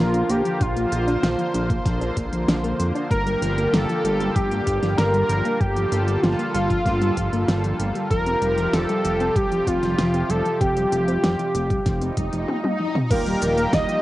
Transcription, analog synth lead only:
0, 0, Header, 1, 2, 480
1, 0, Start_track
1, 0, Key_signature, -2, "minor"
1, 0, Tempo, 625000
1, 467, Time_signature, 4, 2, 24, 8
1, 10767, End_track
2, 0, Start_track
2, 0, Title_t, "Analog synth lead"
2, 0, Program_c, 0, 81
2, 0, Note_on_c, 0, 65, 99
2, 233, Note_on_c, 0, 67, 96
2, 244, Note_off_c, 0, 65, 0
2, 475, Note_on_c, 0, 65, 92
2, 486, Note_off_c, 0, 67, 0
2, 1431, Note_off_c, 0, 65, 0
2, 2387, Note_on_c, 0, 70, 113
2, 2863, Note_on_c, 0, 69, 112
2, 2874, Note_off_c, 0, 70, 0
2, 3342, Note_on_c, 0, 67, 106
2, 3353, Note_off_c, 0, 69, 0
2, 3818, Note_off_c, 0, 67, 0
2, 3823, Note_on_c, 0, 70, 113
2, 4302, Note_on_c, 0, 67, 100
2, 4314, Note_off_c, 0, 70, 0
2, 4780, Note_on_c, 0, 65, 91
2, 4792, Note_off_c, 0, 67, 0
2, 5020, Note_off_c, 0, 65, 0
2, 5025, Note_on_c, 0, 65, 91
2, 5955, Note_off_c, 0, 65, 0
2, 6226, Note_on_c, 0, 70, 124
2, 6705, Note_on_c, 0, 69, 106
2, 6716, Note_off_c, 0, 70, 0
2, 7185, Note_on_c, 0, 67, 107
2, 7197, Note_off_c, 0, 69, 0
2, 7428, Note_on_c, 0, 65, 101
2, 7439, Note_off_c, 0, 67, 0
2, 7908, Note_on_c, 0, 69, 100
2, 7920, Note_off_c, 0, 65, 0
2, 8141, Note_off_c, 0, 69, 0
2, 8146, Note_on_c, 0, 67, 97
2, 9556, Note_off_c, 0, 67, 0
2, 10069, Note_on_c, 0, 70, 112
2, 10548, Note_on_c, 0, 75, 116
2, 10560, Note_off_c, 0, 70, 0
2, 10767, Note_off_c, 0, 75, 0
2, 10767, End_track
0, 0, End_of_file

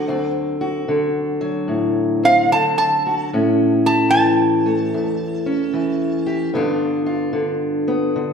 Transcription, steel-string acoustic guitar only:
0, 0, Header, 1, 2, 480
1, 0, Start_track
1, 0, Tempo, 807103
1, 46, Time_signature, 4, 2, 24, 8
1, 4954, End_track
2, 0, Start_track
2, 0, Title_t, "Steel-string acoustic guitar"
2, 0, Program_c, 0, 25
2, 0, Note_on_c, 0, 50, 65
2, 0, Note_on_c, 0, 54, 57
2, 47, Note_on_c, 0, 38, 80
2, 52, Note_on_c, 0, 60, 64
2, 362, Note_on_c, 0, 66, 65
2, 518, Note_off_c, 0, 50, 0
2, 525, Note_on_c, 0, 50, 60
2, 831, Note_off_c, 0, 54, 0
2, 838, Note_on_c, 0, 54, 60
2, 998, Note_on_c, 0, 45, 61
2, 1321, Note_off_c, 0, 60, 0
2, 1328, Note_on_c, 0, 60, 63
2, 1482, Note_off_c, 0, 45, 0
2, 1486, Note_off_c, 0, 50, 0
2, 1495, Note_on_c, 0, 50, 61
2, 1800, Note_off_c, 0, 66, 0
2, 1823, Note_on_c, 0, 66, 64
2, 1951, Note_off_c, 0, 60, 0
2, 1958, Note_off_c, 0, 66, 0
2, 1966, Note_off_c, 0, 54, 0
2, 1967, Note_off_c, 0, 38, 0
2, 1970, Note_off_c, 0, 50, 0
2, 1982, Note_on_c, 0, 45, 73
2, 1986, Note_on_c, 0, 61, 61
2, 2297, Note_on_c, 0, 67, 65
2, 2457, Note_on_c, 0, 52, 59
2, 2770, Note_on_c, 0, 57, 58
2, 2935, Note_off_c, 0, 45, 0
2, 2938, Note_on_c, 0, 40, 59
2, 3240, Note_off_c, 0, 61, 0
2, 3248, Note_on_c, 0, 61, 61
2, 3403, Note_off_c, 0, 52, 0
2, 3410, Note_on_c, 0, 52, 58
2, 3719, Note_off_c, 0, 67, 0
2, 3726, Note_on_c, 0, 67, 66
2, 3868, Note_off_c, 0, 52, 0
2, 3869, Note_off_c, 0, 67, 0
2, 3870, Note_off_c, 0, 61, 0
2, 3872, Note_off_c, 0, 40, 0
2, 3872, Note_off_c, 0, 57, 0
2, 3887, Note_on_c, 0, 43, 79
2, 3893, Note_on_c, 0, 50, 64
2, 3897, Note_on_c, 0, 59, 66
2, 3899, Note_on_c, 0, 62, 63
2, 3903, Note_on_c, 0, 65, 72
2, 4193, Note_off_c, 0, 65, 0
2, 4200, Note_on_c, 0, 65, 62
2, 4351, Note_off_c, 0, 50, 0
2, 4358, Note_on_c, 0, 50, 65
2, 4677, Note_off_c, 0, 59, 0
2, 4685, Note_on_c, 0, 59, 59
2, 4844, Note_off_c, 0, 50, 0
2, 4851, Note_on_c, 0, 50, 63
2, 4954, Note_off_c, 0, 43, 0
2, 4954, Note_off_c, 0, 50, 0
2, 4954, Note_off_c, 0, 59, 0
2, 4954, Note_off_c, 0, 62, 0
2, 4954, Note_off_c, 0, 65, 0
2, 4954, End_track
0, 0, End_of_file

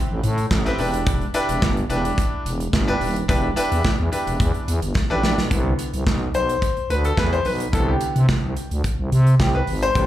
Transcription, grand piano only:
0, 0, Header, 1, 2, 480
1, 0, Start_track
1, 0, Tempo, 555556
1, 921, Time_signature, 4, 2, 24, 8
1, 8697, End_track
2, 0, Start_track
2, 0, Title_t, "Grand piano"
2, 0, Program_c, 0, 0
2, 0, Note_on_c, 0, 60, 85
2, 0, Note_on_c, 0, 64, 74
2, 0, Note_on_c, 0, 67, 80
2, 0, Note_on_c, 0, 71, 89
2, 236, Note_off_c, 0, 60, 0
2, 238, Note_off_c, 0, 64, 0
2, 239, Note_off_c, 0, 67, 0
2, 240, Note_off_c, 0, 71, 0
2, 566, Note_on_c, 0, 60, 105
2, 569, Note_on_c, 0, 64, 96
2, 571, Note_on_c, 0, 67, 101
2, 574, Note_on_c, 0, 71, 108
2, 670, Note_off_c, 0, 64, 0
2, 672, Note_off_c, 0, 67, 0
2, 675, Note_off_c, 0, 71, 0
2, 680, Note_off_c, 0, 60, 0
2, 682, Note_on_c, 0, 62, 92
2, 683, Note_on_c, 0, 64, 76
2, 685, Note_on_c, 0, 67, 82
2, 688, Note_on_c, 0, 71, 97
2, 1071, Note_off_c, 0, 62, 0
2, 1072, Note_off_c, 0, 64, 0
2, 1073, Note_off_c, 0, 67, 0
2, 1074, Note_off_c, 0, 71, 0
2, 1160, Note_on_c, 0, 62, 115
2, 1160, Note_on_c, 0, 64, 106
2, 1163, Note_on_c, 0, 67, 96
2, 1165, Note_on_c, 0, 71, 125
2, 1457, Note_off_c, 0, 62, 0
2, 1457, Note_off_c, 0, 64, 0
2, 1459, Note_off_c, 0, 67, 0
2, 1460, Note_off_c, 0, 71, 0
2, 1638, Note_on_c, 0, 62, 98
2, 1639, Note_on_c, 0, 64, 75
2, 1642, Note_on_c, 0, 67, 82
2, 1646, Note_on_c, 0, 71, 100
2, 2155, Note_off_c, 0, 62, 0
2, 2156, Note_off_c, 0, 64, 0
2, 2158, Note_off_c, 0, 67, 0
2, 2160, Note_off_c, 0, 71, 0
2, 2485, Note_on_c, 0, 62, 95
2, 2486, Note_on_c, 0, 64, 87
2, 2489, Note_on_c, 0, 67, 89
2, 2490, Note_on_c, 0, 71, 118
2, 2705, Note_off_c, 0, 62, 0
2, 2706, Note_off_c, 0, 64, 0
2, 2708, Note_off_c, 0, 67, 0
2, 2708, Note_off_c, 0, 71, 0
2, 2836, Note_on_c, 0, 62, 98
2, 2838, Note_on_c, 0, 64, 92
2, 2841, Note_on_c, 0, 67, 89
2, 2843, Note_on_c, 0, 71, 114
2, 2991, Note_off_c, 0, 62, 0
2, 2992, Note_off_c, 0, 64, 0
2, 2993, Note_off_c, 0, 67, 0
2, 2995, Note_off_c, 0, 71, 0
2, 3077, Note_on_c, 0, 62, 107
2, 3080, Note_on_c, 0, 64, 102
2, 3082, Note_on_c, 0, 67, 102
2, 3086, Note_on_c, 0, 71, 127
2, 3376, Note_off_c, 0, 62, 0
2, 3377, Note_off_c, 0, 64, 0
2, 3378, Note_off_c, 0, 67, 0
2, 3380, Note_off_c, 0, 71, 0
2, 3558, Note_on_c, 0, 62, 84
2, 3558, Note_on_c, 0, 64, 76
2, 3562, Note_on_c, 0, 67, 88
2, 3565, Note_on_c, 0, 71, 100
2, 4075, Note_off_c, 0, 62, 0
2, 4076, Note_off_c, 0, 64, 0
2, 4078, Note_off_c, 0, 67, 0
2, 4079, Note_off_c, 0, 71, 0
2, 4406, Note_on_c, 0, 62, 101
2, 4408, Note_on_c, 0, 64, 83
2, 4410, Note_on_c, 0, 67, 92
2, 4413, Note_on_c, 0, 71, 108
2, 4626, Note_off_c, 0, 62, 0
2, 4627, Note_off_c, 0, 64, 0
2, 4628, Note_off_c, 0, 67, 0
2, 4629, Note_off_c, 0, 71, 0
2, 4755, Note_on_c, 0, 50, 50
2, 4761, Note_on_c, 0, 52, 50
2, 4765, Note_on_c, 0, 59, 56
2, 5082, Note_off_c, 0, 50, 0
2, 5085, Note_off_c, 0, 52, 0
2, 5088, Note_off_c, 0, 59, 0
2, 5485, Note_on_c, 0, 72, 99
2, 5964, Note_on_c, 0, 71, 87
2, 5977, Note_off_c, 0, 72, 0
2, 6091, Note_on_c, 0, 69, 86
2, 6094, Note_off_c, 0, 71, 0
2, 6206, Note_off_c, 0, 69, 0
2, 6207, Note_on_c, 0, 71, 98
2, 6330, Note_on_c, 0, 72, 90
2, 6335, Note_off_c, 0, 71, 0
2, 6434, Note_off_c, 0, 72, 0
2, 6444, Note_on_c, 0, 71, 81
2, 6677, Note_on_c, 0, 50, 54
2, 6682, Note_on_c, 0, 52, 52
2, 6686, Note_on_c, 0, 59, 59
2, 6689, Note_on_c, 0, 69, 85
2, 6690, Note_off_c, 0, 71, 0
2, 6812, Note_on_c, 0, 67, 73
2, 6816, Note_off_c, 0, 69, 0
2, 7364, Note_off_c, 0, 50, 0
2, 7367, Note_off_c, 0, 52, 0
2, 7369, Note_off_c, 0, 59, 0
2, 7495, Note_off_c, 0, 67, 0
2, 8127, Note_on_c, 0, 67, 77
2, 8251, Note_on_c, 0, 71, 76
2, 8255, Note_off_c, 0, 67, 0
2, 8489, Note_on_c, 0, 72, 111
2, 8497, Note_off_c, 0, 71, 0
2, 8593, Note_on_c, 0, 48, 52
2, 8598, Note_on_c, 0, 55, 49
2, 8604, Note_on_c, 0, 59, 59
2, 8697, Note_off_c, 0, 48, 0
2, 8697, Note_off_c, 0, 55, 0
2, 8697, Note_off_c, 0, 59, 0
2, 8697, Note_off_c, 0, 72, 0
2, 8697, End_track
0, 0, End_of_file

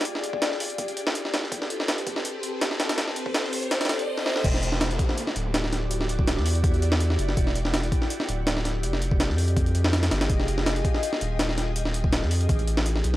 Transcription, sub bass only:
0, 0, Header, 1, 2, 480
1, 0, Start_track
1, 0, Tempo, 365854
1, 70, Time_signature, 4, 2, 24, 8
1, 17275, End_track
2, 0, Start_track
2, 0, Title_t, "Sub bass"
2, 0, Program_c, 0, 38
2, 5831, Note_on_c, 0, 28, 102
2, 6532, Note_off_c, 0, 28, 0
2, 7026, Note_on_c, 0, 26, 88
2, 8360, Note_on_c, 0, 40, 83
2, 8380, Note_off_c, 0, 26, 0
2, 9413, Note_off_c, 0, 40, 0
2, 9427, Note_on_c, 0, 30, 104
2, 9646, Note_off_c, 0, 30, 0
2, 9669, Note_on_c, 0, 28, 100
2, 10371, Note_off_c, 0, 28, 0
2, 10871, Note_on_c, 0, 26, 94
2, 11588, Note_on_c, 0, 29, 82
2, 11608, Note_off_c, 0, 26, 0
2, 12196, Note_on_c, 0, 41, 84
2, 12215, Note_off_c, 0, 29, 0
2, 13251, Note_off_c, 0, 41, 0
2, 13271, Note_on_c, 0, 31, 105
2, 13488, Note_off_c, 0, 31, 0
2, 13510, Note_on_c, 0, 29, 99
2, 14212, Note_off_c, 0, 29, 0
2, 14710, Note_on_c, 0, 27, 86
2, 16038, Note_on_c, 0, 41, 82
2, 16058, Note_off_c, 0, 27, 0
2, 16372, Note_off_c, 0, 41, 0
2, 16392, Note_on_c, 0, 33, 85
2, 17093, Note_off_c, 0, 33, 0
2, 17113, Note_on_c, 0, 35, 107
2, 17275, Note_off_c, 0, 35, 0
2, 17275, End_track
0, 0, End_of_file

